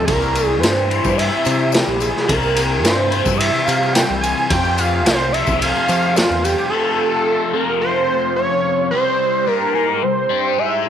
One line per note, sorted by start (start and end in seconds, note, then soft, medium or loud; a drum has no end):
0.00 4.46 E5 medium
0.05 0.63 C2 medium
0.05 0.91 C3 medium
0.05 0.91 E3 medium
0.05 0.90 G3 medium
0.05 0.90 C4 medium
0.05 4.46 E4 medium
0.05 4.46 G4 medium
0.05 0.47 A#4 loud
0.05 8.88 C6 medium
0.05 kick loud
0.05 ride medium
0.05 tambourine soft
0.10 0.89 E4 medium
0.22 tambourine soft
0.35 ride medium
0.35 tambourine medium
0.47 0.62 G#4 loud
0.60 0.99 G2 medium
0.60 1.18 C5 loud
0.60 snare loud
0.60 ride medium
0.60 tambourine medium
0.77 tambourine soft
0.89 2.27 C3 medium
0.89 2.27 E3 medium
0.89 2.27 G3 medium
0.89 2.30 C4 medium
0.89 2.27 E4 medium
0.89 ride medium
0.89 tambourine soft
1.04 1.29 G2 medium
1.04 kick medium
1.04 tambourine medium
1.17 1.75 E5 loud
1.17 ride medium
1.17 tambourine soft
1.32 tambourine soft
1.45 1.82 C3 medium
1.45 ride soft
1.45 tambourine medium
1.59 tambourine soft
1.72 2.02 G4 medium
1.72 snare medium
1.72 ride medium
1.72 tambourine medium
1.87 2.11 A#1 medium
1.87 tambourine soft
2.00 2.26 G#4 medium
2.00 ride soft
2.00 tambourine medium
2.16 snare soft
2.27 2.85 C2 medium
2.27 3.10 C3 medium
2.27 3.10 E3 medium
2.27 3.10 G3 medium
2.27 3.12 C4 medium
2.27 3.10 E4 medium
2.27 2.79 A#4 loud
2.27 kick loud
2.27 ride medium
2.27 tambourine soft
2.43 tambourine soft
2.56 ride medium
2.56 tambourine medium
2.83 3.20 G2 medium
2.83 3.35 C5 loud
2.83 snare medium
2.83 ride medium
2.83 tambourine medium
3.11 4.49 C3 medium
3.11 4.49 E3 medium
3.11 4.49 G3 medium
3.11 4.51 C4 medium
3.11 4.48 E4 medium
3.11 ride medium
3.11 tambourine soft
3.25 3.50 G2 medium
3.25 kick medium
3.25 tambourine medium
3.37 3.67 E5 loud
3.37 ride medium
3.54 tambourine soft
3.65 4.03 C3 medium
3.65 3.94 F5 loud
3.65 ride medium
3.65 tambourine medium
3.83 tambourine soft
3.93 4.21 G5 loud
3.93 snare loud
3.93 ride medium
3.93 tambourine medium
4.10 4.33 C2 medium
4.21 4.47 G#5 medium
4.21 ride medium
4.21 tambourine medium
4.37 tambourine soft
4.49 5.35 F2 medium
4.49 5.06 F2 medium
4.49 5.31 C3 medium
4.49 5.34 F3 medium
4.49 5.34 A3 medium
4.49 5.33 C4 medium
4.49 8.89 F4 medium
4.49 5.33 F4 medium
4.49 8.89 A4 medium
4.49 8.89 F5 medium
4.49 4.80 G5 loud
4.49 kick loud
4.49 ride medium
4.49 tambourine soft
4.65 tambourine soft
4.78 5.05 F5 medium
4.78 ride medium
4.78 tambourine medium
5.06 5.41 C2 medium
5.06 5.34 C5 loud
5.06 snare loud
5.06 ride medium
5.06 tambourine medium
5.20 tambourine soft
5.32 6.69 F2 medium
5.32 6.70 C3 medium
5.32 6.70 F3 medium
5.32 6.70 A3 medium
5.32 6.72 C4 medium
5.32 6.70 F4 medium
5.32 5.58 E5 medium
5.32 ride medium
5.32 tambourine soft
5.47 5.71 C2 medium
5.47 kick medium
5.47 tambourine medium
5.59 6.17 F5 loud
5.59 ride medium
5.59 tambourine soft
5.75 tambourine soft
5.88 6.24 F3 medium
5.88 ride soft
5.88 tambourine medium
6.02 tambourine soft
6.16 6.45 F4 medium
6.16 snare loud
6.16 ride medium
6.16 tambourine medium
6.30 6.54 E2 medium
6.30 tambourine soft
6.43 6.69 G4 medium
6.43 ride medium
6.43 tambourine medium
6.58 tambourine soft
6.70 7.52 F2 medium
6.70 7.53 C3 medium
6.70 7.53 F3 medium
6.70 7.53 A3 medium
6.70 7.53 C4 medium
6.70 7.52 F4 medium
6.70 7.55 A4 loud
7.53 8.91 F2 medium
7.53 8.91 C3 medium
7.53 8.91 F3 medium
7.53 8.90 A3 medium
7.53 8.90 C4 medium
7.53 8.90 F4 medium
7.53 7.81 A#4 medium
7.81 8.33 C5 medium
8.36 8.88 C#5 medium
8.91 9.46 C3 medium
8.91 9.46 G3 medium
8.91 10.89 G3 medium
8.91 9.47 C4 loud
8.91 10.89 E4 medium
8.91 10.89 G4 medium
8.91 9.49 C5 loud
8.91 10.89 C6 medium
9.47 9.74 G3 medium
9.47 9.74 D4 loud
9.47 9.74 G4 medium
9.47 10.04 A#4 loud
9.75 10.02 G#3 medium
9.75 10.02 D#4 medium
9.75 10.02 G#4 loud
10.02 10.25 C3 medium
10.02 10.25 G3 medium
10.02 10.60 C5 loud
10.29 10.57 G3 medium
10.29 10.57 D4 loud
10.29 10.57 G4 loud
10.58 10.85 G#3 medium
10.58 10.85 D#4 medium
10.58 10.85 G#4 loud
10.58 10.89 E5 loud
10.85 10.89 C3 medium
10.85 10.89 G3 medium